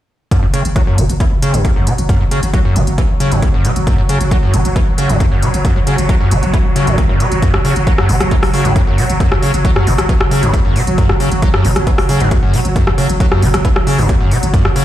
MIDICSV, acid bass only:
0, 0, Header, 1, 2, 480
1, 0, Start_track
1, 0, Tempo, 444444
1, 339, Time_signature, 4, 2, 24, 8
1, 16036, End_track
2, 0, Start_track
2, 0, Title_t, "Acid bass"
2, 0, Program_c, 0, 38
2, 339, Note_on_c, 0, 42, 104
2, 441, Note_off_c, 0, 42, 0
2, 462, Note_on_c, 0, 42, 75
2, 501, Note_off_c, 0, 42, 0
2, 579, Note_on_c, 0, 49, 99
2, 681, Note_off_c, 0, 49, 0
2, 819, Note_on_c, 0, 54, 81
2, 887, Note_off_c, 0, 54, 0
2, 942, Note_on_c, 0, 42, 99
2, 1059, Note_on_c, 0, 49, 102
2, 1075, Note_off_c, 0, 42, 0
2, 1127, Note_off_c, 0, 49, 0
2, 1299, Note_on_c, 0, 52, 82
2, 1340, Note_off_c, 0, 52, 0
2, 1539, Note_on_c, 0, 49, 97
2, 1662, Note_on_c, 0, 42, 73
2, 1678, Note_off_c, 0, 49, 0
2, 1759, Note_off_c, 0, 42, 0
2, 1903, Note_on_c, 0, 42, 70
2, 2019, Note_on_c, 0, 49, 99
2, 2035, Note_off_c, 0, 42, 0
2, 2087, Note_off_c, 0, 49, 0
2, 2259, Note_on_c, 0, 42, 105
2, 2361, Note_off_c, 0, 42, 0
2, 2382, Note_on_c, 0, 42, 77
2, 2421, Note_off_c, 0, 42, 0
2, 2499, Note_on_c, 0, 49, 95
2, 2601, Note_off_c, 0, 49, 0
2, 2740, Note_on_c, 0, 54, 82
2, 2807, Note_off_c, 0, 54, 0
2, 2863, Note_on_c, 0, 42, 94
2, 2979, Note_on_c, 0, 49, 101
2, 2995, Note_off_c, 0, 42, 0
2, 3047, Note_off_c, 0, 49, 0
2, 3220, Note_on_c, 0, 52, 79
2, 3260, Note_off_c, 0, 52, 0
2, 3459, Note_on_c, 0, 49, 97
2, 3583, Note_on_c, 0, 42, 75
2, 3599, Note_off_c, 0, 49, 0
2, 3679, Note_off_c, 0, 42, 0
2, 3824, Note_on_c, 0, 42, 75
2, 3940, Note_on_c, 0, 49, 99
2, 3956, Note_off_c, 0, 42, 0
2, 4007, Note_off_c, 0, 49, 0
2, 4180, Note_on_c, 0, 42, 101
2, 4281, Note_off_c, 0, 42, 0
2, 4303, Note_on_c, 0, 42, 77
2, 4341, Note_off_c, 0, 42, 0
2, 4420, Note_on_c, 0, 49, 100
2, 4521, Note_off_c, 0, 49, 0
2, 4660, Note_on_c, 0, 54, 83
2, 4727, Note_off_c, 0, 54, 0
2, 4783, Note_on_c, 0, 42, 99
2, 4899, Note_on_c, 0, 49, 100
2, 4916, Note_off_c, 0, 42, 0
2, 4967, Note_off_c, 0, 49, 0
2, 5139, Note_on_c, 0, 52, 78
2, 5180, Note_off_c, 0, 52, 0
2, 5380, Note_on_c, 0, 49, 99
2, 5504, Note_on_c, 0, 42, 72
2, 5520, Note_off_c, 0, 49, 0
2, 5599, Note_off_c, 0, 42, 0
2, 5620, Note_on_c, 0, 42, 83
2, 5687, Note_off_c, 0, 42, 0
2, 5743, Note_on_c, 0, 42, 74
2, 5859, Note_on_c, 0, 49, 100
2, 5875, Note_off_c, 0, 42, 0
2, 5927, Note_off_c, 0, 49, 0
2, 6099, Note_on_c, 0, 42, 102
2, 6201, Note_off_c, 0, 42, 0
2, 6222, Note_on_c, 0, 42, 76
2, 6261, Note_off_c, 0, 42, 0
2, 6339, Note_on_c, 0, 49, 95
2, 6441, Note_off_c, 0, 49, 0
2, 6580, Note_on_c, 0, 54, 82
2, 6647, Note_off_c, 0, 54, 0
2, 6702, Note_on_c, 0, 42, 99
2, 6819, Note_on_c, 0, 49, 102
2, 6835, Note_off_c, 0, 42, 0
2, 6887, Note_off_c, 0, 49, 0
2, 7058, Note_on_c, 0, 52, 80
2, 7099, Note_off_c, 0, 52, 0
2, 7298, Note_on_c, 0, 49, 103
2, 7421, Note_on_c, 0, 42, 76
2, 7437, Note_off_c, 0, 49, 0
2, 7518, Note_off_c, 0, 42, 0
2, 7538, Note_on_c, 0, 42, 79
2, 7606, Note_off_c, 0, 42, 0
2, 7661, Note_on_c, 0, 42, 73
2, 7778, Note_on_c, 0, 49, 96
2, 7794, Note_off_c, 0, 42, 0
2, 7846, Note_off_c, 0, 49, 0
2, 8018, Note_on_c, 0, 42, 105
2, 8120, Note_off_c, 0, 42, 0
2, 8141, Note_on_c, 0, 42, 76
2, 8180, Note_off_c, 0, 42, 0
2, 8259, Note_on_c, 0, 49, 94
2, 8361, Note_off_c, 0, 49, 0
2, 8499, Note_on_c, 0, 54, 81
2, 8567, Note_off_c, 0, 54, 0
2, 8622, Note_on_c, 0, 42, 98
2, 8739, Note_on_c, 0, 49, 101
2, 8755, Note_off_c, 0, 42, 0
2, 8807, Note_off_c, 0, 49, 0
2, 8979, Note_on_c, 0, 52, 81
2, 9020, Note_off_c, 0, 52, 0
2, 9220, Note_on_c, 0, 49, 96
2, 9342, Note_on_c, 0, 42, 73
2, 9358, Note_off_c, 0, 49, 0
2, 9439, Note_off_c, 0, 42, 0
2, 9459, Note_on_c, 0, 42, 81
2, 9527, Note_off_c, 0, 42, 0
2, 9582, Note_on_c, 0, 42, 73
2, 9699, Note_on_c, 0, 49, 98
2, 9715, Note_off_c, 0, 42, 0
2, 9767, Note_off_c, 0, 49, 0
2, 9939, Note_on_c, 0, 42, 105
2, 10041, Note_off_c, 0, 42, 0
2, 10062, Note_on_c, 0, 42, 72
2, 10100, Note_off_c, 0, 42, 0
2, 10178, Note_on_c, 0, 49, 99
2, 10280, Note_off_c, 0, 49, 0
2, 10418, Note_on_c, 0, 54, 83
2, 10487, Note_off_c, 0, 54, 0
2, 10542, Note_on_c, 0, 42, 101
2, 10659, Note_on_c, 0, 49, 104
2, 10675, Note_off_c, 0, 42, 0
2, 10727, Note_off_c, 0, 49, 0
2, 10898, Note_on_c, 0, 52, 79
2, 10939, Note_off_c, 0, 52, 0
2, 11138, Note_on_c, 0, 49, 96
2, 11261, Note_on_c, 0, 42, 72
2, 11277, Note_off_c, 0, 49, 0
2, 11358, Note_off_c, 0, 42, 0
2, 11378, Note_on_c, 0, 42, 83
2, 11446, Note_off_c, 0, 42, 0
2, 11501, Note_on_c, 0, 42, 76
2, 11618, Note_on_c, 0, 49, 98
2, 11634, Note_off_c, 0, 42, 0
2, 11686, Note_off_c, 0, 49, 0
2, 11858, Note_on_c, 0, 42, 105
2, 11960, Note_off_c, 0, 42, 0
2, 11982, Note_on_c, 0, 42, 78
2, 12021, Note_off_c, 0, 42, 0
2, 12099, Note_on_c, 0, 49, 96
2, 12200, Note_off_c, 0, 49, 0
2, 12339, Note_on_c, 0, 54, 82
2, 12407, Note_off_c, 0, 54, 0
2, 12461, Note_on_c, 0, 42, 97
2, 12579, Note_on_c, 0, 49, 103
2, 12595, Note_off_c, 0, 42, 0
2, 12647, Note_off_c, 0, 49, 0
2, 12819, Note_on_c, 0, 52, 80
2, 12860, Note_off_c, 0, 52, 0
2, 13058, Note_on_c, 0, 49, 101
2, 13181, Note_on_c, 0, 42, 74
2, 13197, Note_off_c, 0, 49, 0
2, 13278, Note_off_c, 0, 42, 0
2, 13422, Note_on_c, 0, 42, 74
2, 13537, Note_on_c, 0, 49, 101
2, 13553, Note_off_c, 0, 42, 0
2, 13606, Note_off_c, 0, 49, 0
2, 13778, Note_on_c, 0, 42, 106
2, 13880, Note_off_c, 0, 42, 0
2, 13901, Note_on_c, 0, 42, 76
2, 13940, Note_off_c, 0, 42, 0
2, 14018, Note_on_c, 0, 49, 96
2, 14120, Note_off_c, 0, 49, 0
2, 14258, Note_on_c, 0, 54, 86
2, 14326, Note_off_c, 0, 54, 0
2, 14380, Note_on_c, 0, 42, 98
2, 14497, Note_on_c, 0, 49, 103
2, 14513, Note_off_c, 0, 42, 0
2, 14566, Note_off_c, 0, 49, 0
2, 14738, Note_on_c, 0, 52, 83
2, 14779, Note_off_c, 0, 52, 0
2, 14978, Note_on_c, 0, 49, 103
2, 15102, Note_on_c, 0, 42, 76
2, 15119, Note_off_c, 0, 49, 0
2, 15199, Note_off_c, 0, 42, 0
2, 15219, Note_on_c, 0, 42, 85
2, 15287, Note_off_c, 0, 42, 0
2, 15342, Note_on_c, 0, 42, 73
2, 15459, Note_on_c, 0, 49, 101
2, 15475, Note_off_c, 0, 42, 0
2, 15527, Note_off_c, 0, 49, 0
2, 15698, Note_on_c, 0, 42, 102
2, 15800, Note_off_c, 0, 42, 0
2, 15822, Note_on_c, 0, 42, 74
2, 15861, Note_off_c, 0, 42, 0
2, 15940, Note_on_c, 0, 49, 101
2, 16036, Note_off_c, 0, 49, 0
2, 16036, End_track
0, 0, End_of_file